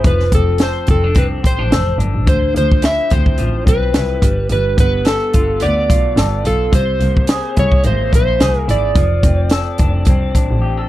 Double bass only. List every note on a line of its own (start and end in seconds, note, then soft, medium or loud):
0.04 0.27 F1 loud
0.32 0.67 F1 medium
0.88 1.10 F1 medium
1.16 1.38 C2 medium
1.44 1.55 A1 soft
1.59 1.69 A1 medium
1.71 1.84 F1 medium
1.99 2.11 G1 medium
2.14 2.25 A1 medium
2.27 2.49 D2 loud
2.55 2.89 D2 medium
3.12 3.34 D2 medium
3.39 3.61 A1 medium
3.66 3.89 B1 medium
3.95 4.17 C2 medium
4.22 4.45 G1 medium
4.50 4.72 G1 medium
4.78 5.12 G1 medium
5.34 5.56 G1 medium
5.62 5.84 D2 medium
5.90 6.12 B1 medium
6.16 6.39 G1 medium
6.45 6.67 B1 medium
6.73 6.95 C2 medium
7.00 7.35 C2 medium
7.57 7.84 C2 loud
7.84 8.07 G#1 medium
8.13 8.39 A#1 medium
8.40 8.62 C2 medium
8.68 8.90 G#1 medium
8.95 9.18 F1 medium
9.23 9.58 F1 loud
9.79 10.01 F1 medium
10.06 10.29 C2 medium
10.35 10.46 A1 soft
10.51 10.61 A1 medium